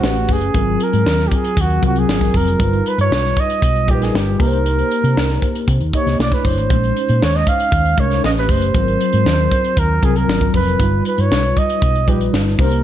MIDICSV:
0, 0, Header, 1, 5, 480
1, 0, Start_track
1, 0, Tempo, 512383
1, 511, Time_signature, 4, 2, 24, 8
1, 12024, End_track
2, 0, Start_track
2, 0, Title_t, "Flugelhorn"
2, 0, Program_c, 0, 56
2, 0, Note_on_c, 0, 66, 78
2, 304, Note_on_c, 0, 68, 88
2, 318, Note_off_c, 0, 66, 0
2, 782, Note_on_c, 0, 70, 85
2, 796, Note_off_c, 0, 68, 0
2, 1194, Note_on_c, 0, 67, 51
2, 1208, Note_off_c, 0, 70, 0
2, 1265, Note_on_c, 0, 68, 83
2, 1279, Note_off_c, 0, 67, 0
2, 1507, Note_on_c, 0, 66, 87
2, 1521, Note_off_c, 0, 68, 0
2, 1730, Note_off_c, 0, 66, 0
2, 1745, Note_on_c, 0, 66, 86
2, 1862, Note_on_c, 0, 68, 89
2, 1876, Note_off_c, 0, 66, 0
2, 2217, Note_on_c, 0, 70, 89
2, 2231, Note_off_c, 0, 68, 0
2, 2699, Note_on_c, 0, 71, 84
2, 2713, Note_off_c, 0, 70, 0
2, 2806, Note_off_c, 0, 71, 0
2, 2820, Note_on_c, 0, 73, 106
2, 3184, Note_on_c, 0, 75, 111
2, 3198, Note_off_c, 0, 73, 0
2, 3661, Note_on_c, 0, 67, 94
2, 3675, Note_off_c, 0, 75, 0
2, 3781, Note_on_c, 0, 68, 80
2, 3795, Note_off_c, 0, 67, 0
2, 3899, Note_on_c, 0, 67, 81
2, 3913, Note_off_c, 0, 68, 0
2, 4139, Note_on_c, 0, 70, 87
2, 4153, Note_off_c, 0, 67, 0
2, 5314, Note_off_c, 0, 70, 0
2, 5571, Note_on_c, 0, 73, 83
2, 5787, Note_off_c, 0, 73, 0
2, 5813, Note_on_c, 0, 74, 87
2, 5934, Note_on_c, 0, 71, 82
2, 5948, Note_off_c, 0, 74, 0
2, 6048, Note_on_c, 0, 72, 88
2, 6062, Note_off_c, 0, 71, 0
2, 6777, Note_on_c, 0, 73, 91
2, 6791, Note_off_c, 0, 72, 0
2, 6893, Note_on_c, 0, 75, 86
2, 6907, Note_off_c, 0, 73, 0
2, 7009, Note_on_c, 0, 77, 100
2, 7023, Note_off_c, 0, 75, 0
2, 7494, Note_on_c, 0, 73, 93
2, 7508, Note_off_c, 0, 77, 0
2, 7724, Note_off_c, 0, 73, 0
2, 7731, Note_on_c, 0, 75, 88
2, 7781, Note_off_c, 0, 75, 0
2, 7854, Note_on_c, 0, 71, 83
2, 7968, Note_on_c, 0, 72, 88
2, 7982, Note_off_c, 0, 71, 0
2, 9170, Note_on_c, 0, 70, 90
2, 9184, Note_off_c, 0, 72, 0
2, 9411, Note_on_c, 0, 68, 81
2, 9425, Note_off_c, 0, 70, 0
2, 9529, Note_on_c, 0, 70, 86
2, 9543, Note_off_c, 0, 68, 0
2, 9881, Note_off_c, 0, 70, 0
2, 9888, Note_on_c, 0, 71, 87
2, 10327, Note_off_c, 0, 71, 0
2, 10372, Note_on_c, 0, 71, 83
2, 10497, Note_on_c, 0, 73, 94
2, 10511, Note_off_c, 0, 71, 0
2, 10853, Note_on_c, 0, 75, 91
2, 10867, Note_off_c, 0, 73, 0
2, 11333, Note_on_c, 0, 67, 66
2, 11347, Note_off_c, 0, 75, 0
2, 11442, Note_off_c, 0, 67, 0
2, 11810, Note_on_c, 0, 70, 81
2, 12024, Note_off_c, 0, 70, 0
2, 12024, End_track
3, 0, Start_track
3, 0, Title_t, "Tine electric piano"
3, 0, Program_c, 1, 4
3, 0, Control_c, 1, 64, 127
3, 31, Note_on_c, 1, 57, 78
3, 35, Note_on_c, 1, 61, 59
3, 38, Note_on_c, 1, 67, 65
3, 43, Note_on_c, 1, 71, 76
3, 44, Control_c, 1, 64, 0
3, 200, Control_c, 1, 64, 127
3, 415, Note_off_c, 1, 57, 0
3, 417, Note_off_c, 1, 61, 0
3, 419, Note_off_c, 1, 67, 0
3, 421, Note_off_c, 1, 71, 0
3, 516, Note_on_c, 1, 54, 67
3, 517, Note_on_c, 1, 60, 61
3, 520, Note_on_c, 1, 65, 58
3, 522, Control_c, 1, 64, 0
3, 526, Note_on_c, 1, 70, 80
3, 681, Control_c, 1, 64, 127
3, 1093, Note_off_c, 1, 54, 0
3, 1094, Note_off_c, 1, 60, 0
3, 1096, Note_off_c, 1, 65, 0
3, 1099, Note_off_c, 1, 70, 0
3, 1704, Note_on_c, 1, 54, 67
3, 1705, Note_on_c, 1, 60, 66
3, 1712, Note_on_c, 1, 65, 59
3, 1716, Note_on_c, 1, 70, 72
3, 2143, Note_off_c, 1, 54, 0
3, 2144, Note_off_c, 1, 60, 0
3, 2147, Note_off_c, 1, 65, 0
3, 2149, Note_off_c, 1, 70, 0
3, 2422, Note_on_c, 1, 55, 68
3, 2425, Note_on_c, 1, 63, 66
3, 2430, Note_on_c, 1, 65, 64
3, 2437, Note_on_c, 1, 71, 73
3, 2444, Control_c, 1, 64, 0
3, 2621, Control_c, 1, 64, 127
3, 3007, Note_off_c, 1, 55, 0
3, 3009, Note_off_c, 1, 63, 0
3, 3011, Note_off_c, 1, 65, 0
3, 3015, Note_off_c, 1, 71, 0
3, 3624, Note_on_c, 1, 55, 69
3, 3630, Note_on_c, 1, 63, 61
3, 3634, Note_on_c, 1, 65, 58
3, 3636, Note_on_c, 1, 70, 53
3, 3693, Note_off_c, 1, 70, 0
3, 3695, Note_on_c, 1, 71, 72
3, 4064, Note_off_c, 1, 55, 0
3, 4067, Note_off_c, 1, 63, 0
3, 4069, Note_off_c, 1, 65, 0
3, 4099, Note_off_c, 1, 71, 0
3, 4117, Note_on_c, 1, 58, 76
3, 4122, Note_on_c, 1, 63, 60
3, 4123, Note_on_c, 1, 67, 65
3, 4126, Control_c, 1, 64, 0
3, 4127, Note_on_c, 1, 71, 63
3, 4178, Note_off_c, 1, 71, 0
3, 4186, Note_on_c, 1, 72, 85
3, 4314, Control_c, 1, 64, 127
3, 4884, Note_off_c, 1, 58, 0
3, 4887, Note_off_c, 1, 63, 0
3, 4887, Note_off_c, 1, 67, 0
3, 4918, Note_off_c, 1, 72, 0
3, 5562, Note_on_c, 1, 58, 65
3, 5565, Note_on_c, 1, 63, 59
3, 5570, Note_on_c, 1, 67, 58
3, 5572, Note_on_c, 1, 75, 70
3, 5798, Note_off_c, 1, 58, 0
3, 5799, Note_on_c, 1, 57, 74
3, 5800, Note_off_c, 1, 63, 0
3, 5802, Note_off_c, 1, 67, 0
3, 5803, Note_off_c, 1, 75, 0
3, 5803, Note_on_c, 1, 62, 60
3, 5806, Control_c, 1, 64, 0
3, 5809, Note_on_c, 1, 64, 64
3, 5813, Note_on_c, 1, 73, 77
3, 5976, Control_c, 1, 64, 127
3, 6181, Note_off_c, 1, 57, 0
3, 6183, Note_off_c, 1, 62, 0
3, 6186, Note_off_c, 1, 64, 0
3, 6188, Note_off_c, 1, 73, 0
3, 6275, Note_on_c, 1, 56, 69
3, 6280, Note_on_c, 1, 61, 55
3, 6285, Note_on_c, 1, 63, 61
3, 6286, Control_c, 1, 64, 0
3, 6288, Note_on_c, 1, 72, 69
3, 6425, Control_c, 1, 64, 127
3, 6854, Note_off_c, 1, 56, 0
3, 6857, Note_off_c, 1, 61, 0
3, 6859, Note_off_c, 1, 63, 0
3, 6861, Note_off_c, 1, 72, 0
3, 7473, Note_on_c, 1, 56, 61
3, 7479, Note_on_c, 1, 61, 60
3, 7484, Note_on_c, 1, 63, 58
3, 7488, Note_on_c, 1, 70, 73
3, 7707, Note_off_c, 1, 61, 0
3, 7714, Note_off_c, 1, 56, 0
3, 7714, Note_on_c, 1, 57, 79
3, 7718, Note_on_c, 1, 61, 66
3, 7719, Note_off_c, 1, 63, 0
3, 7719, Note_on_c, 1, 67, 68
3, 7721, Note_off_c, 1, 70, 0
3, 7725, Note_on_c, 1, 71, 74
3, 7727, Control_c, 1, 64, 0
3, 7895, Control_c, 1, 64, 127
3, 8098, Note_off_c, 1, 57, 0
3, 8100, Note_off_c, 1, 61, 0
3, 8101, Note_off_c, 1, 67, 0
3, 8104, Note_off_c, 1, 71, 0
3, 8190, Note_on_c, 1, 54, 67
3, 8196, Note_on_c, 1, 60, 56
3, 8198, Note_on_c, 1, 65, 58
3, 8202, Note_on_c, 1, 70, 72
3, 8206, Control_c, 1, 64, 0
3, 8346, Control_c, 1, 64, 127
3, 8771, Note_off_c, 1, 54, 0
3, 8774, Note_off_c, 1, 60, 0
3, 8775, Note_off_c, 1, 65, 0
3, 8777, Note_off_c, 1, 70, 0
3, 9383, Note_on_c, 1, 54, 64
3, 9386, Note_on_c, 1, 60, 60
3, 9391, Note_on_c, 1, 65, 59
3, 9396, Note_on_c, 1, 70, 81
3, 9822, Note_off_c, 1, 54, 0
3, 9824, Note_off_c, 1, 60, 0
3, 9826, Note_off_c, 1, 65, 0
3, 9829, Note_off_c, 1, 70, 0
3, 10103, Note_on_c, 1, 55, 70
3, 10105, Note_on_c, 1, 63, 68
3, 10110, Note_on_c, 1, 65, 66
3, 10114, Note_on_c, 1, 71, 78
3, 10127, Control_c, 1, 64, 0
3, 10262, Control_c, 1, 64, 127
3, 10687, Note_off_c, 1, 55, 0
3, 10688, Note_off_c, 1, 63, 0
3, 10690, Note_off_c, 1, 65, 0
3, 10692, Note_off_c, 1, 71, 0
3, 11308, Note_on_c, 1, 55, 66
3, 11312, Note_on_c, 1, 63, 62
3, 11316, Note_on_c, 1, 65, 61
3, 11321, Note_on_c, 1, 71, 77
3, 11744, Note_off_c, 1, 55, 0
3, 11746, Note_off_c, 1, 63, 0
3, 11748, Note_off_c, 1, 65, 0
3, 11750, Note_off_c, 1, 71, 0
3, 11783, Note_on_c, 1, 58, 73
3, 11789, Note_on_c, 1, 61, 56
3, 11792, Note_on_c, 1, 67, 67
3, 11797, Note_on_c, 1, 72, 78
3, 11804, Control_c, 1, 64, 0
3, 11845, Note_on_c, 1, 63, 67
3, 11848, Note_off_c, 1, 61, 0
3, 11944, Control_c, 1, 64, 127
3, 12024, Note_off_c, 1, 58, 0
3, 12024, Note_off_c, 1, 63, 0
3, 12024, Note_off_c, 1, 67, 0
3, 12024, Note_off_c, 1, 72, 0
3, 12024, End_track
4, 0, Start_track
4, 0, Title_t, "Fingered electric bass"
4, 0, Program_c, 2, 33
4, 30, Note_on_c, 2, 33, 93
4, 269, Note_off_c, 2, 33, 0
4, 269, Note_on_c, 2, 30, 90
4, 465, Note_off_c, 2, 30, 0
4, 511, Note_on_c, 2, 32, 90
4, 706, Note_off_c, 2, 32, 0
4, 875, Note_on_c, 2, 44, 85
4, 971, Note_off_c, 2, 44, 0
4, 989, Note_on_c, 2, 39, 76
4, 1185, Note_off_c, 2, 39, 0
4, 1471, Note_on_c, 2, 39, 90
4, 1666, Note_off_c, 2, 39, 0
4, 1711, Note_on_c, 2, 36, 95
4, 1907, Note_off_c, 2, 36, 0
4, 1952, Note_on_c, 2, 32, 82
4, 2147, Note_off_c, 2, 32, 0
4, 2194, Note_on_c, 2, 29, 83
4, 2388, Note_off_c, 2, 29, 0
4, 2433, Note_on_c, 2, 31, 90
4, 2628, Note_off_c, 2, 31, 0
4, 2794, Note_on_c, 2, 43, 97
4, 2891, Note_off_c, 2, 43, 0
4, 2914, Note_on_c, 2, 35, 83
4, 3108, Note_off_c, 2, 35, 0
4, 3394, Note_on_c, 2, 35, 101
4, 3638, Note_off_c, 2, 35, 0
4, 3638, Note_on_c, 2, 34, 83
4, 3831, Note_off_c, 2, 34, 0
4, 3881, Note_on_c, 2, 31, 88
4, 4073, Note_off_c, 2, 31, 0
4, 4121, Note_on_c, 2, 36, 98
4, 4508, Note_off_c, 2, 36, 0
4, 4719, Note_on_c, 2, 48, 80
4, 4815, Note_off_c, 2, 48, 0
4, 4840, Note_on_c, 2, 36, 86
4, 5033, Note_off_c, 2, 36, 0
4, 5320, Note_on_c, 2, 48, 110
4, 5415, Note_off_c, 2, 48, 0
4, 5436, Note_on_c, 2, 39, 74
4, 5533, Note_off_c, 2, 39, 0
4, 5681, Note_on_c, 2, 36, 80
4, 5776, Note_off_c, 2, 36, 0
4, 5800, Note_on_c, 2, 35, 87
4, 5895, Note_off_c, 2, 35, 0
4, 6041, Note_on_c, 2, 30, 93
4, 6164, Note_off_c, 2, 30, 0
4, 6164, Note_on_c, 2, 32, 77
4, 6258, Note_off_c, 2, 32, 0
4, 6279, Note_on_c, 2, 34, 90
4, 6472, Note_off_c, 2, 34, 0
4, 6645, Note_on_c, 2, 46, 86
4, 6739, Note_off_c, 2, 46, 0
4, 6766, Note_on_c, 2, 39, 92
4, 6956, Note_off_c, 2, 39, 0
4, 7235, Note_on_c, 2, 39, 91
4, 7430, Note_off_c, 2, 39, 0
4, 7472, Note_on_c, 2, 36, 88
4, 7668, Note_off_c, 2, 36, 0
4, 7719, Note_on_c, 2, 33, 107
4, 7953, Note_off_c, 2, 33, 0
4, 7953, Note_on_c, 2, 30, 81
4, 8149, Note_off_c, 2, 30, 0
4, 8192, Note_on_c, 2, 32, 93
4, 8388, Note_off_c, 2, 32, 0
4, 8558, Note_on_c, 2, 44, 81
4, 8654, Note_off_c, 2, 44, 0
4, 8671, Note_on_c, 2, 39, 93
4, 8867, Note_off_c, 2, 39, 0
4, 9154, Note_on_c, 2, 39, 89
4, 9348, Note_off_c, 2, 39, 0
4, 9395, Note_on_c, 2, 36, 94
4, 9589, Note_off_c, 2, 36, 0
4, 9631, Note_on_c, 2, 32, 90
4, 9827, Note_off_c, 2, 32, 0
4, 9876, Note_on_c, 2, 29, 84
4, 10070, Note_off_c, 2, 29, 0
4, 10114, Note_on_c, 2, 31, 96
4, 10309, Note_off_c, 2, 31, 0
4, 10476, Note_on_c, 2, 43, 96
4, 10572, Note_off_c, 2, 43, 0
4, 10596, Note_on_c, 2, 35, 87
4, 10789, Note_off_c, 2, 35, 0
4, 11073, Note_on_c, 2, 35, 88
4, 11315, Note_off_c, 2, 35, 0
4, 11315, Note_on_c, 2, 34, 98
4, 11508, Note_off_c, 2, 34, 0
4, 11552, Note_on_c, 2, 31, 93
4, 11746, Note_off_c, 2, 31, 0
4, 11794, Note_on_c, 2, 36, 96
4, 12024, Note_off_c, 2, 36, 0
4, 12024, End_track
5, 0, Start_track
5, 0, Title_t, "Drums"
5, 33, Note_on_c, 9, 38, 107
5, 127, Note_off_c, 9, 38, 0
5, 145, Note_on_c, 9, 42, 30
5, 238, Note_off_c, 9, 42, 0
5, 262, Note_on_c, 9, 46, 63
5, 269, Note_on_c, 9, 36, 79
5, 356, Note_off_c, 9, 46, 0
5, 363, Note_off_c, 9, 36, 0
5, 387, Note_on_c, 9, 42, 45
5, 480, Note_off_c, 9, 42, 0
5, 508, Note_on_c, 9, 42, 79
5, 510, Note_on_c, 9, 36, 101
5, 602, Note_off_c, 9, 42, 0
5, 604, Note_off_c, 9, 36, 0
5, 751, Note_on_c, 9, 42, 66
5, 845, Note_off_c, 9, 42, 0
5, 870, Note_on_c, 9, 42, 49
5, 964, Note_off_c, 9, 42, 0
5, 997, Note_on_c, 9, 38, 108
5, 1091, Note_off_c, 9, 38, 0
5, 1119, Note_on_c, 9, 38, 35
5, 1212, Note_off_c, 9, 38, 0
5, 1232, Note_on_c, 9, 36, 75
5, 1234, Note_on_c, 9, 42, 63
5, 1326, Note_off_c, 9, 36, 0
5, 1327, Note_off_c, 9, 42, 0
5, 1351, Note_on_c, 9, 42, 57
5, 1445, Note_off_c, 9, 42, 0
5, 1470, Note_on_c, 9, 36, 97
5, 1474, Note_on_c, 9, 42, 105
5, 1563, Note_off_c, 9, 36, 0
5, 1568, Note_off_c, 9, 42, 0
5, 1592, Note_on_c, 9, 42, 30
5, 1686, Note_off_c, 9, 42, 0
5, 1711, Note_on_c, 9, 42, 61
5, 1712, Note_on_c, 9, 36, 74
5, 1804, Note_off_c, 9, 42, 0
5, 1805, Note_off_c, 9, 36, 0
5, 1834, Note_on_c, 9, 42, 44
5, 1928, Note_off_c, 9, 42, 0
5, 1960, Note_on_c, 9, 38, 97
5, 2053, Note_off_c, 9, 38, 0
5, 2071, Note_on_c, 9, 36, 70
5, 2072, Note_on_c, 9, 42, 34
5, 2083, Note_on_c, 9, 38, 29
5, 2165, Note_off_c, 9, 36, 0
5, 2166, Note_off_c, 9, 42, 0
5, 2176, Note_off_c, 9, 38, 0
5, 2194, Note_on_c, 9, 36, 74
5, 2194, Note_on_c, 9, 46, 64
5, 2287, Note_off_c, 9, 36, 0
5, 2288, Note_off_c, 9, 46, 0
5, 2316, Note_on_c, 9, 42, 50
5, 2410, Note_off_c, 9, 42, 0
5, 2434, Note_on_c, 9, 36, 115
5, 2435, Note_on_c, 9, 42, 87
5, 2528, Note_off_c, 9, 36, 0
5, 2529, Note_off_c, 9, 42, 0
5, 2557, Note_on_c, 9, 42, 30
5, 2651, Note_off_c, 9, 42, 0
5, 2679, Note_on_c, 9, 42, 70
5, 2773, Note_off_c, 9, 42, 0
5, 2797, Note_on_c, 9, 42, 55
5, 2890, Note_off_c, 9, 42, 0
5, 2925, Note_on_c, 9, 38, 105
5, 3018, Note_off_c, 9, 38, 0
5, 3045, Note_on_c, 9, 38, 33
5, 3139, Note_off_c, 9, 38, 0
5, 3155, Note_on_c, 9, 36, 74
5, 3156, Note_on_c, 9, 42, 60
5, 3248, Note_off_c, 9, 36, 0
5, 3250, Note_off_c, 9, 42, 0
5, 3277, Note_on_c, 9, 42, 59
5, 3371, Note_off_c, 9, 42, 0
5, 3394, Note_on_c, 9, 36, 104
5, 3401, Note_on_c, 9, 42, 98
5, 3488, Note_off_c, 9, 36, 0
5, 3495, Note_off_c, 9, 42, 0
5, 3518, Note_on_c, 9, 42, 30
5, 3612, Note_off_c, 9, 42, 0
5, 3636, Note_on_c, 9, 36, 86
5, 3638, Note_on_c, 9, 42, 64
5, 3730, Note_off_c, 9, 36, 0
5, 3732, Note_off_c, 9, 42, 0
5, 3764, Note_on_c, 9, 42, 45
5, 3772, Note_on_c, 9, 38, 36
5, 3858, Note_off_c, 9, 42, 0
5, 3866, Note_off_c, 9, 38, 0
5, 3891, Note_on_c, 9, 38, 109
5, 3985, Note_off_c, 9, 38, 0
5, 4120, Note_on_c, 9, 36, 102
5, 4125, Note_on_c, 9, 46, 63
5, 4214, Note_off_c, 9, 36, 0
5, 4219, Note_off_c, 9, 46, 0
5, 4246, Note_on_c, 9, 42, 46
5, 4339, Note_off_c, 9, 42, 0
5, 4365, Note_on_c, 9, 42, 75
5, 4459, Note_off_c, 9, 42, 0
5, 4484, Note_on_c, 9, 42, 30
5, 4578, Note_off_c, 9, 42, 0
5, 4602, Note_on_c, 9, 42, 59
5, 4696, Note_off_c, 9, 42, 0
5, 4724, Note_on_c, 9, 42, 51
5, 4818, Note_off_c, 9, 42, 0
5, 4847, Note_on_c, 9, 38, 107
5, 4941, Note_off_c, 9, 38, 0
5, 4969, Note_on_c, 9, 38, 31
5, 5063, Note_off_c, 9, 38, 0
5, 5080, Note_on_c, 9, 36, 66
5, 5085, Note_on_c, 9, 42, 60
5, 5174, Note_off_c, 9, 36, 0
5, 5179, Note_off_c, 9, 42, 0
5, 5202, Note_on_c, 9, 42, 58
5, 5296, Note_off_c, 9, 42, 0
5, 5318, Note_on_c, 9, 36, 99
5, 5325, Note_on_c, 9, 42, 91
5, 5412, Note_off_c, 9, 36, 0
5, 5419, Note_off_c, 9, 42, 0
5, 5440, Note_on_c, 9, 42, 35
5, 5533, Note_off_c, 9, 42, 0
5, 5560, Note_on_c, 9, 36, 82
5, 5560, Note_on_c, 9, 42, 66
5, 5653, Note_off_c, 9, 36, 0
5, 5654, Note_off_c, 9, 42, 0
5, 5685, Note_on_c, 9, 42, 47
5, 5693, Note_on_c, 9, 38, 36
5, 5779, Note_off_c, 9, 42, 0
5, 5787, Note_off_c, 9, 38, 0
5, 5810, Note_on_c, 9, 38, 109
5, 5904, Note_off_c, 9, 38, 0
5, 5918, Note_on_c, 9, 36, 78
5, 5920, Note_on_c, 9, 42, 31
5, 5931, Note_on_c, 9, 38, 29
5, 6011, Note_off_c, 9, 36, 0
5, 6014, Note_off_c, 9, 42, 0
5, 6025, Note_off_c, 9, 38, 0
5, 6040, Note_on_c, 9, 36, 84
5, 6041, Note_on_c, 9, 46, 61
5, 6134, Note_off_c, 9, 36, 0
5, 6135, Note_off_c, 9, 46, 0
5, 6161, Note_on_c, 9, 42, 47
5, 6255, Note_off_c, 9, 42, 0
5, 6279, Note_on_c, 9, 36, 101
5, 6280, Note_on_c, 9, 42, 86
5, 6373, Note_off_c, 9, 36, 0
5, 6374, Note_off_c, 9, 42, 0
5, 6405, Note_on_c, 9, 42, 34
5, 6498, Note_off_c, 9, 42, 0
5, 6525, Note_on_c, 9, 42, 68
5, 6618, Note_off_c, 9, 42, 0
5, 6638, Note_on_c, 9, 42, 53
5, 6732, Note_off_c, 9, 42, 0
5, 6768, Note_on_c, 9, 38, 110
5, 6861, Note_off_c, 9, 38, 0
5, 6885, Note_on_c, 9, 38, 31
5, 6979, Note_off_c, 9, 38, 0
5, 6997, Note_on_c, 9, 36, 75
5, 7001, Note_on_c, 9, 42, 66
5, 7090, Note_off_c, 9, 36, 0
5, 7095, Note_off_c, 9, 42, 0
5, 7118, Note_on_c, 9, 42, 57
5, 7212, Note_off_c, 9, 42, 0
5, 7233, Note_on_c, 9, 36, 104
5, 7238, Note_on_c, 9, 42, 91
5, 7327, Note_off_c, 9, 36, 0
5, 7331, Note_off_c, 9, 42, 0
5, 7355, Note_on_c, 9, 42, 35
5, 7448, Note_off_c, 9, 42, 0
5, 7469, Note_on_c, 9, 42, 60
5, 7473, Note_on_c, 9, 36, 81
5, 7563, Note_off_c, 9, 42, 0
5, 7566, Note_off_c, 9, 36, 0
5, 7595, Note_on_c, 9, 42, 47
5, 7603, Note_on_c, 9, 38, 33
5, 7688, Note_off_c, 9, 42, 0
5, 7696, Note_off_c, 9, 38, 0
5, 7723, Note_on_c, 9, 38, 97
5, 7816, Note_off_c, 9, 38, 0
5, 7836, Note_on_c, 9, 42, 33
5, 7847, Note_on_c, 9, 38, 29
5, 7930, Note_off_c, 9, 42, 0
5, 7941, Note_off_c, 9, 38, 0
5, 7950, Note_on_c, 9, 46, 66
5, 7953, Note_on_c, 9, 36, 84
5, 8044, Note_off_c, 9, 46, 0
5, 8047, Note_off_c, 9, 36, 0
5, 8073, Note_on_c, 9, 42, 51
5, 8167, Note_off_c, 9, 42, 0
5, 8192, Note_on_c, 9, 36, 109
5, 8192, Note_on_c, 9, 42, 91
5, 8286, Note_off_c, 9, 36, 0
5, 8286, Note_off_c, 9, 42, 0
5, 8317, Note_on_c, 9, 42, 31
5, 8410, Note_off_c, 9, 42, 0
5, 8435, Note_on_c, 9, 42, 73
5, 8529, Note_off_c, 9, 42, 0
5, 8551, Note_on_c, 9, 42, 52
5, 8644, Note_off_c, 9, 42, 0
5, 8678, Note_on_c, 9, 38, 106
5, 8772, Note_off_c, 9, 38, 0
5, 8914, Note_on_c, 9, 36, 76
5, 8917, Note_on_c, 9, 42, 66
5, 9007, Note_off_c, 9, 36, 0
5, 9011, Note_off_c, 9, 42, 0
5, 9035, Note_on_c, 9, 42, 50
5, 9128, Note_off_c, 9, 42, 0
5, 9152, Note_on_c, 9, 36, 95
5, 9156, Note_on_c, 9, 42, 97
5, 9246, Note_off_c, 9, 36, 0
5, 9250, Note_off_c, 9, 42, 0
5, 9393, Note_on_c, 9, 36, 80
5, 9393, Note_on_c, 9, 42, 65
5, 9487, Note_off_c, 9, 36, 0
5, 9487, Note_off_c, 9, 42, 0
5, 9517, Note_on_c, 9, 42, 48
5, 9611, Note_off_c, 9, 42, 0
5, 9644, Note_on_c, 9, 38, 110
5, 9737, Note_off_c, 9, 38, 0
5, 9752, Note_on_c, 9, 36, 79
5, 9846, Note_off_c, 9, 36, 0
5, 9871, Note_on_c, 9, 46, 59
5, 9874, Note_on_c, 9, 36, 73
5, 9965, Note_off_c, 9, 46, 0
5, 9968, Note_off_c, 9, 36, 0
5, 9997, Note_on_c, 9, 42, 52
5, 10091, Note_off_c, 9, 42, 0
5, 10114, Note_on_c, 9, 36, 108
5, 10114, Note_on_c, 9, 42, 87
5, 10207, Note_off_c, 9, 36, 0
5, 10208, Note_off_c, 9, 42, 0
5, 10353, Note_on_c, 9, 42, 69
5, 10447, Note_off_c, 9, 42, 0
5, 10472, Note_on_c, 9, 42, 49
5, 10566, Note_off_c, 9, 42, 0
5, 10602, Note_on_c, 9, 38, 108
5, 10696, Note_off_c, 9, 38, 0
5, 10720, Note_on_c, 9, 42, 34
5, 10813, Note_off_c, 9, 42, 0
5, 10836, Note_on_c, 9, 36, 70
5, 10839, Note_on_c, 9, 42, 62
5, 10930, Note_off_c, 9, 36, 0
5, 10933, Note_off_c, 9, 42, 0
5, 10955, Note_on_c, 9, 42, 55
5, 11049, Note_off_c, 9, 42, 0
5, 11073, Note_on_c, 9, 36, 107
5, 11077, Note_on_c, 9, 42, 94
5, 11167, Note_off_c, 9, 36, 0
5, 11171, Note_off_c, 9, 42, 0
5, 11197, Note_on_c, 9, 42, 33
5, 11291, Note_off_c, 9, 42, 0
5, 11313, Note_on_c, 9, 42, 67
5, 11314, Note_on_c, 9, 36, 78
5, 11407, Note_off_c, 9, 36, 0
5, 11407, Note_off_c, 9, 42, 0
5, 11435, Note_on_c, 9, 42, 46
5, 11529, Note_off_c, 9, 42, 0
5, 11560, Note_on_c, 9, 38, 103
5, 11654, Note_off_c, 9, 38, 0
5, 11674, Note_on_c, 9, 42, 32
5, 11685, Note_on_c, 9, 38, 27
5, 11768, Note_off_c, 9, 42, 0
5, 11779, Note_off_c, 9, 38, 0
5, 11791, Note_on_c, 9, 46, 66
5, 11793, Note_on_c, 9, 36, 98
5, 11885, Note_off_c, 9, 46, 0
5, 11886, Note_off_c, 9, 36, 0
5, 11911, Note_on_c, 9, 42, 48
5, 12005, Note_off_c, 9, 42, 0
5, 12024, End_track
0, 0, End_of_file